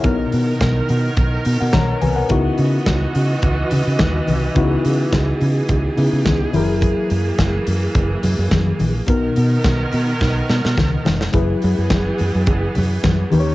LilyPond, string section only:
\new Staff \with { instrumentName = "String section" } { \time 4/4 \key fis \mixolydian \tempo 4 = 106 << { ais'1 | fis'1 | gis'1~ | gis'1 |
ais'1 | gis'2.~ gis'8 g'8 | } \\ { <dis b>1 | <e dis''>1~ | <e dis''>2.~ <e dis''>8 <e ais>8~ | <e ais>1 |
<dis b>1 | <e b>2.~ <e b>8 <dis cis'>8 | } >> }